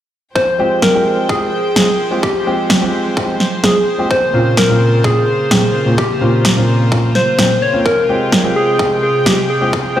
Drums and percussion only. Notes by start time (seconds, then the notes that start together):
0.36 kick
0.82 kick, snare
1.29 kick
1.76 kick, snare
2.23 kick
2.70 kick, snare
3.17 kick
3.40 snare
3.64 kick, snare
4.11 kick
4.57 kick, snare
5.04 kick
5.51 kick, snare
5.98 kick
6.45 kick, snare
6.92 kick
7.15 snare
7.39 kick, snare
7.86 kick
8.32 kick, snare
8.79 kick
9.26 kick, snare
9.73 kick